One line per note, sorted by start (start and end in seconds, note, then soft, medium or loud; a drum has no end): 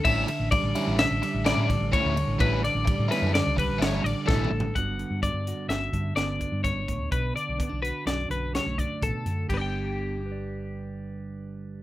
0.00 0.28 A2 medium
0.00 0.26 D3 medium
0.00 0.75 D4 medium
0.04 0.23 A1 loud
0.04 0.28 E3 medium
0.04 0.27 G3 medium
0.04 0.27 C#4 medium
0.04 0.27 E4 loud
0.04 0.51 E5 loud
0.04 kick loud
0.04 crash loud
0.27 0.98 D3 medium
0.27 muted overdriven electric guitar stroke medium
0.27 ride medium
0.40 0.58 A1 medium
0.51 1.24 G3 medium
0.51 0.98 D5 medium
0.51 muted overdriven electric guitar stroke medium
0.51 kick loud
0.51 ride loud
0.63 0.72 A1 medium
0.75 0.97 E3 medium
0.75 0.98 G3 medium
0.75 0.98 C#4 loud
0.75 1.47 D4 medium
0.75 0.98 E4 medium
0.75 ride medium
0.87 1.05 A1 medium
0.99 1.69 D3 medium
0.99 1.46 E5 medium
0.99 muted overdriven electric guitar stroke soft
0.99 snare loud
0.99 ride loud
1.11 1.20 A1 loud
1.22 2.86 G3 medium
1.22 muted overdriven electric guitar stroke soft
1.22 snare soft
1.22 ride medium
1.34 1.52 A1 medium
1.45 1.68 E3 medium
1.45 1.68 G3 medium
1.45 1.68 C#4 loud
1.45 3.11 D4 medium
1.45 1.67 E4 loud
1.45 1.93 D5 medium
1.45 snare loud
1.45 ride loud
1.57 1.75 A2 medium
1.69 2.16 D3 medium
1.69 muted overdriven electric guitar stroke medium
1.69 kick medium
1.69 snare soft
1.69 ride medium
1.81 1.90 A1 loud
1.92 2.17 A2 medium
1.92 2.16 E3 medium
1.92 2.16 G3 loud
1.92 2.15 C#4 medium
1.92 2.15 E4 medium
1.92 2.40 C#5 medium
1.92 kick loud
1.92 ride loud
2.05 2.23 D2 medium
2.16 2.62 D3 medium
2.16 muted overdriven electric guitar stroke medium
2.16 ride medium
2.27 2.37 A1 medium
2.39 2.67 A1 loud
2.39 2.63 A2 medium
2.39 2.62 E3 medium
2.39 2.61 G3 medium
2.39 2.61 C#4 medium
2.39 2.61 E4 loud
2.39 2.63 B4 medium
2.39 kick loud
2.39 ride medium
2.62 3.34 D3 medium
2.62 3.10 D5 medium
2.62 muted overdriven electric guitar stroke medium
2.62 snare soft
2.62 ride medium
2.75 2.93 A1 medium
2.85 3.57 G3 medium
2.85 muted overdriven electric guitar stroke medium
2.85 kick loud
2.85 ride loud
2.99 3.08 A2 medium
3.08 3.31 E3 medium
3.08 3.32 G3 medium
3.08 3.23 B3 medium
3.08 3.31 C#4 medium
3.08 3.32 E4 loud
3.08 3.34 B4 medium
3.08 snare soft
3.08 ride medium
3.22 3.40 F#2 medium
3.22 3.81 D4 medium
3.32 3.57 D5 medium
3.32 muted overdriven electric guitar stroke soft
3.32 snare loud
3.32 ride loud
3.36 4.05 D3 medium
3.47 3.70 C#2 medium
3.56 4.77 G3 medium
3.56 3.82 B4 medium
3.56 muted overdriven electric guitar stroke soft
3.56 kick medium
3.56 ride medium
3.70 3.78 A1 loud
3.78 3.99 G1 loud
3.78 4.02 E3 medium
3.78 4.01 G3 medium
3.78 4.01 C#4 medium
3.78 4.01 E4 loud
3.78 4.04 C#5 medium
3.78 ride loud
3.82 4.73 D4 medium
3.82 snare loud
4.02 4.13 A1 medium
4.02 4.75 D3 medium
4.02 4.28 D5 medium
4.02 muted overdriven electric guitar stroke medium
4.02 ride medium
4.26 4.46 A1 medium
4.26 4.51 B2 medium
4.26 4.50 E3 medium
4.26 4.50 G3 medium
4.26 4.49 C#4 medium
4.26 4.50 E4 loud
4.26 4.75 A4 medium
4.26 kick loud
4.26 snare medium
4.45 mid tom medium
4.51 4.69 A1 medium
4.51 4.75 A2 medium
4.51 muted overdriven electric guitar stroke soft
4.60 floor tom loud
4.75 5.03 G1 loud
4.75 5.70 G2 medium
4.75 4.98 D3 medium
4.75 6.17 B3 medium
4.75 5.22 D4 medium
4.75 5.47 F#4 medium
4.75 5.22 F#5 medium
4.75 kick medium
4.75 closed hi-hat medium
4.99 5.92 D3 medium
4.99 closed hi-hat soft
5.11 5.29 G2 medium
5.23 6.39 D4 medium
5.23 5.69 D5 medium
5.23 kick medium
5.23 closed hi-hat medium
5.33 5.52 G2 medium
5.47 7.82 F#4 soft
5.47 closed hi-hat medium
5.68 5.87 G1 medium
5.68 7.12 D2 medium
5.68 6.16 E5 medium
5.68 snare loud
5.68 closed hi-hat medium
5.93 6.11 G2 medium
5.93 7.33 D3 medium
5.93 kick medium
5.93 closed hi-hat medium
6.16 6.44 G1 medium
6.16 7.58 B3 medium
6.16 6.63 D5 medium
6.16 snare loud
6.16 closed hi-hat medium
6.39 7.58 D4 medium
6.39 kick medium
6.39 closed hi-hat medium
6.52 6.71 G2 medium
6.62 6.86 G2 medium
6.62 7.11 C#5 medium
6.62 kick medium
6.62 snare soft
6.62 closed hi-hat medium
6.76 7.00 G1 medium
6.86 7.10 A2 medium
6.86 kick medium
6.86 closed hi-hat medium
7.00 7.09 D2 medium
7.11 7.30 B1 medium
7.11 7.35 B2 medium
7.11 7.35 B4 medium
7.11 kick medium
7.11 closed hi-hat medium
7.34 8.27 D3 medium
7.34 7.82 D5 medium
7.34 closed hi-hat medium
7.49 7.57 B1 medium
7.58 7.69 B3 medium
7.58 kick medium
7.58 closed hi-hat medium
7.69 7.90 B1 medium
7.69 8.77 D4 soft
7.82 9.46 F#4 soft
7.82 8.06 B4 medium
7.82 closed hi-hat medium
8.05 8.25 B1 medium
8.05 9.01 F#2 medium
8.05 8.31 D5 medium
8.05 snare loud
8.05 closed hi-hat medium
8.28 8.58 B1 medium
8.28 9.25 D3 medium
8.28 8.54 B4 medium
8.28 closed hi-hat medium
8.53 8.66 G3 medium
8.53 8.78 C#5 medium
8.53 snare loud
8.53 closed hi-hat medium
8.66 8.85 B1 medium
8.66 9.49 A3 medium
8.78 9.47 D4 medium
8.78 9.02 D5 medium
8.78 kick medium
8.78 closed hi-hat medium
9.02 9.11 A1 medium
9.02 9.26 B2 medium
9.02 9.49 A4 medium
9.02 kick medium
9.02 closed hi-hat medium
9.26 9.44 F#2 medium
9.26 9.51 D3 medium
9.26 closed hi-hat medium
9.49 11.83 G1 medium
9.49 11.83 G2 medium
9.49 11.83 D3 medium
9.49 11.83 G4 medium
9.49 kick medium
9.49 crash medium
9.54 10.20 B3 medium
9.54 10.26 D4 soft
9.54 9.57 B4 medium
9.54 9.61 D5 medium
9.61 11.83 G5 medium
10.20 11.83 G4 medium
10.26 11.83 B4 medium
10.32 11.83 D5 medium